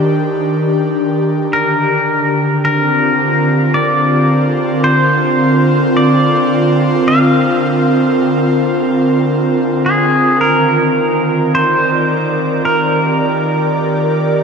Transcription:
Already playing: analog synth pad D#3 D4 G4 A#4
1.53 analog synth pad D3, pedal steel guitar A#4
2.60 analog synth pad C4
2.65 pedal steel guitar A#4
2.80 analog synth pad F4 A#4
3.74 pedal steel guitar D5
4.84 pedal steel guitar C5
5.97 pedal steel guitar D5
7.08 pedal steel guitar F5
9.86 pedal steel guitar G#4
10.41 analog synth pad D#3, pedal steel guitar A#4
11.49 analog synth pad D5
11.55 pedal steel guitar C5
12.65 analog synth pad G4, pedal steel guitar A#4

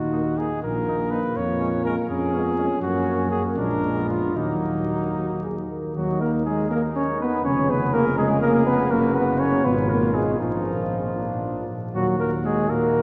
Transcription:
Already playing: tuba D#2, trombone D#4, trumpet F#4
0.12 french horn A#3, trumpet D#4
0.38 french horn A#3, trumpet D#4 G#4
0.62 tuba A#1, trombone A#3, trumpet A#4
0.88 french horn A#3, trumpet D#4
1.11 french horn A#3, trumpet D#4 B4
1.36 tuba F2, trumpet C#5
1.60 french horn G#3, trumpet C#4
1.84 french horn G#3, trumpet C#4 A#4
2.09 tuba F2, trombone C#4, trumpet G#4
2.33 french horn G#3, trombone B3, trumpet C#4
2.58 french horn G#3, trumpet C#4, trombone C#4
2.82 tuba F#2, french horn A#3, trumpet C#4 F#4
3.31 trumpet G#4
3.57 tuba A#1, french horn G#3, trumpet D4 A#4, trombone D4
3.96 trumpet B3
4.09 trumpet F4
4.36 tuba D#2, french horn F#3, trumpet A#3 D#4, trombone F#4
5.16 trombone F#4
5.43 trombone G#4
5.70 trombone A#4
5.95 tuba D#2, trombone D#3, french horn F#3, trumpet D#4 F#4
6.20 french horn A#3, trumpet A#4
6.46 french horn G#3, trumpet G#4
6.70 trombone D#3, french horn A#3, trumpet D#4 A#4
6.96 french horn C#4, trumpet C#5
7.20 french horn B3, trumpet B4
7.44 tuba F1, trombone C#3, french horn C#4, trumpet G#4 C#5
7.70 french horn B3, trumpet B4
7.93 french horn A#3, trumpet A#4
8.18 trombone C#3, french horn G#3, trumpet G#4
8.42 french horn A#3, trumpet A#4
8.66 french horn B3, trumpet B4
8.90 tuba F#1, trombone C#3, french horn A#3, trumpet F#4 A#4
9.15 french horn B3, trumpet B4
9.40 french horn C#4, trumpet C#5
9.64 tuba G#1, trombone B2, french horn B3, trumpet F4 B4
9.89 french horn A#3, trumpet A#4
10.14 french horn G#3, trumpet G#4
10.40 tuba A#1, trombone A#2, french horn F3, trumpet D#4 F4
11.16 trombone A#2, trumpet D4
11.94 tuba D#2, trombone A#2, french horn F#3, trumpet F#4
12.19 french horn A#3, trumpet A#4
12.45 french horn G#3, trumpet G#4
12.70 trombone A#2, french horn A#3, trumpet F#4 A#4

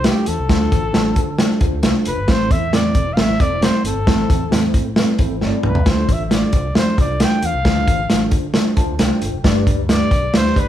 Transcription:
0.04 tine electric piano D4 F4 A4 B4, trumpet G4, snare, closed hi-hat
0.10 tine electric piano C5
0.26 fingered electric bass E2, trumpet A4, closed hi-hat
0.39 fingered electric bass C2
0.48 fingered electric bass D2, tine electric piano D3 D4 F4 A4 C5, kick, snare, closed hi-hat
0.72 fingered electric bass A1, kick, closed hi-hat
0.93 fingered electric bass A1, tine electric piano D4 F4 A4 C5, snare, closed hi-hat
1.16 fingered electric bass D3, kick, closed hi-hat
1.38 tine electric piano D4 F4 A4 C5, snare, closed hi-hat
1.61 fingered electric bass D2, tine electric piano D4 F4 A4 C5, kick, closed hi-hat
1.73 fingered electric bass D2
1.83 fingered electric bass C2, tine electric piano D4 F4 A4 C5, snare, closed hi-hat
2.05 fingered electric bass F1, trumpet B4, closed hi-hat
2.17 fingered electric bass G1
2.28 fingered electric bass A1, tine electric piano A2 C4 E4 A4 C5, trumpet C5, kick, snare, closed hi-hat
2.51 fingered electric bass E2, trumpet E5, kick, closed hi-hat
2.73 tine electric piano C4 E4 A4 C5, trumpet D5, snare, closed hi-hat
2.95 fingered electric bass E1, kick, closed hi-hat
3.14 fingered electric bass A1, tine electric piano C4 E4 A4, trumpet F5, snare
3.18 tine electric piano C5, trumpet E5, closed hi-hat
3.29 snare
3.39 fingered electric bass E1, tine electric piano C4 E4 A4 C5, trumpet D5, kick, closed hi-hat
3.61 tine electric piano C4 E4 A4 C5, trumpet C5, snare, closed hi-hat
3.84 fingered electric bass G1, trumpet A4, closed hi-hat
3.96 fingered electric bass G1
4.06 fingered electric bass A1, tine electric piano A2 C4 E4 A4 C5, kick, snare, closed hi-hat
4.30 fingered electric bass E2, kick, closed hi-hat
4.51 fingered electric bass E2, tine electric piano C4 E4 A4 C5, snare, closed hi-hat
4.74 fingered electric bass A2, kick, closed hi-hat
4.96 tine electric piano C4 E4 A4 B4, snare, closed hi-hat
5.18 fingered electric bass A1, tine electric piano C4 E4 A4 C5, kick, closed hi-hat
5.31 fingered electric bass A1
5.41 fingered electric bass G1, tine electric piano C4 E4 A4 C#5, snare
5.47 tine electric piano D5
5.63 fingered electric bass C2, trumpet B4, mid tom
5.75 floor tom
5.86 fingered electric bass D2, tine electric piano D3 D4 F4 A4 C5, trumpet C5, kick, snare, closed hi-hat
6.09 fingered electric bass A1, trumpet E5, kick, closed hi-hat
6.25 trumpet E5
6.31 tine electric piano D4 F4 A4 C5, trumpet D5, snare, closed hi-hat
6.53 fingered electric bass C2, kick, closed hi-hat
6.75 fingered electric bass F2, tine electric piano D4 F4 A4 C5, trumpet C5, snare, closed hi-hat
6.98 fingered electric bass C2, tine electric piano D4 F4 A4 C5, trumpet D5, kick, closed hi-hat
7.20 tine electric piano D4 F4 A4 C5, trumpet G5, snare, closed hi-hat
7.42 fingered electric bass E2, trumpet F5, closed hi-hat
7.54 fingered electric bass C2
7.65 fingered electric bass D2, tine electric piano D3 D4 F4 A4 C5, kick, snare, closed hi-hat
7.88 fingered electric bass A1, kick, closed hi-hat
8.10 fingered electric bass A1, tine electric piano D4 F4 A4 C5, snare, closed hi-hat
8.31 fingered electric bass D3, kick, closed hi-hat
8.54 tine electric piano D4 F4 A4 C5, snare, closed hi-hat
8.77 fingered electric bass D2, tine electric piano D4 F4 A4 C5 A5, kick, closed hi-hat
8.89 fingered electric bass D2
8.99 fingered electric bass C2, tine electric piano D4 E4 A4 C5 G5, snare, closed hi-hat
9.04 tine electric piano F4
9.22 fingered electric bass G1, closed hi-hat
9.32 fingered electric bass F1
9.44 fingered electric bass G1, tine electric piano G2 D4 G4 B4 D5, kick, snare, closed hi-hat
9.67 fingered electric bass D2, kick, closed hi-hat
9.89 tine electric piano D4 G4 B4 D5, trumpet D5, snare, closed hi-hat
10.11 fingered electric bass B1, kick, closed hi-hat
10.33 fingered electric bass D2, tine electric piano D4 G4 B4 D5, trumpet C5, snare, closed hi-hat
10.46 snare
10.56 fingered electric bass G1, tine electric piano D4 G4 B4 D5, trumpet B4, kick, closed hi-hat

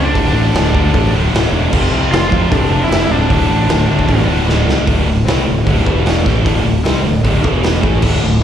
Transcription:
Already playing: fingered electric bass C#2, distorted electric guitar F2 C3 F3 A3 C4 F4, lead electric guitar D4
0.13 fingered electric bass D1, distorted electric guitar D2 A2 D3 A3 F4, kick, open hi-hat
0.32 fingered electric bass A1, distorted electric guitar D2 A2 D3
0.52 fingered electric bass D1, distorted electric guitar D2 A2 D3, open hi-hat
0.56 snare
0.72 distorted electric guitar D2 A2 D3 A3 F4, fingered electric bass D2, kick
0.76 distorted electric guitar D2
0.93 fingered electric bass A1, distorted electric guitar D2 A2 D3, kick, open hi-hat
1.12 fingered electric bass D1, distorted electric guitar D2 A2 D3
1.32 fingered electric bass D1, distorted electric guitar D2 A2 D3, open hi-hat
1.36 snare
1.50 fingered electric bass E1, distorted electric guitar D2 A2 D3
1.72 fingered electric bass F1, distorted electric guitar F2 C3 F3 A3 C4 F4, kick, crash
1.91 fingered electric bass C2, distorted electric guitar F2 C3 F3
2.11 fingered electric bass F1, distorted electric guitar F2 C3 F3, lead electric guitar F4, snare, open hi-hat
2.30 fingered electric bass F2, distorted electric guitar F2 C3 F3 A3 C4 F4, kick
2.50 fingered electric bass C2, distorted electric guitar F2 C3 F3, lead electric guitar D4, kick, open hi-hat
2.69 fingered electric bass F1, distorted electric guitar F2 C3 F3
2.84 lead electric guitar E4
2.89 fingered electric bass F1, distorted electric guitar F2 C3 F3, snare, open hi-hat
3.08 fingered electric bass D1, distorted electric guitar F2 C3 F3
3.12 lead electric guitar D4
3.28 fingered electric bass D1, distorted electric guitar D2 A2 D3, kick, open hi-hat
3.33 distorted electric guitar A3 F4
3.48 fingered electric bass A1, distorted electric guitar D2 A2 D3
3.66 fingered electric bass D1, distorted electric guitar D2 A2 D3, snare, open hi-hat
3.86 distorted electric guitar D2 A2 D3 A3 F4, fingered electric bass D2
3.91 distorted electric guitar D2 A2 D3
3.99 kick
4.06 fingered electric bass A1, distorted electric guitar D2 A2 D3, kick, open hi-hat
4.26 fingered electric bass D1, distorted electric guitar D2 A2 D3
4.45 fingered electric bass D1, distorted electric guitar D2 A2 D3
4.49 snare
4.65 fingered electric bass C2, distorted electric guitar D2 A2 D3
4.69 distorted electric guitar A2 D3, snare
4.85 fingered electric bass D1, distorted electric guitar D2 A2 D3, kick, open hi-hat
5.06 fingered electric bass D1, distorted electric guitar D2 A2
5.24 fingered electric bass C2, distorted electric guitar C3 G3 C4, open hi-hat
5.28 distorted electric guitar C3 G3 C4, snare
5.44 fingered electric bass D1, distorted electric guitar D2 A2
5.49 distorted electric guitar D2 A2
5.64 fingered electric bass D1, distorted electric guitar D2 A2 D3, kick, open hi-hat
5.68 distorted electric guitar D2 A2 D3
5.84 fingered electric bass E1, distorted electric guitar E2 B2 E3, kick
5.88 distorted electric guitar E2 B2 E3
6.06 snare, open hi-hat
6.24 fingered electric bass A1, distorted electric guitar A2 E3 A3, kick, snare
6.42 fingered electric bass D1, distorted electric guitar D2 A2 D3, kick, open hi-hat
6.48 distorted electric guitar D3
6.63 fingered electric bass D1, distorted electric guitar D2 A2
6.67 distorted electric guitar A2
6.83 fingered electric bass C2, distorted electric guitar C3 G3 C4, snare, open hi-hat
6.88 distorted electric guitar C4
7.03 fingered electric bass D1, distorted electric guitar D2 A2
7.23 fingered electric bass D1, distorted electric guitar D2 A2 D3, kick, open hi-hat
7.42 fingered electric bass E1, distorted electric guitar E2 B2 E3, kick
7.63 snare, open hi-hat
7.81 fingered electric bass A1, distorted electric guitar A2 E3 A3, kick
8.02 fingered electric bass D1, distorted electric guitar D2 A2 D3, kick, crash
8.22 fingered electric bass D1, distorted electric guitar D2 A2
8.40 fingered electric bass C2

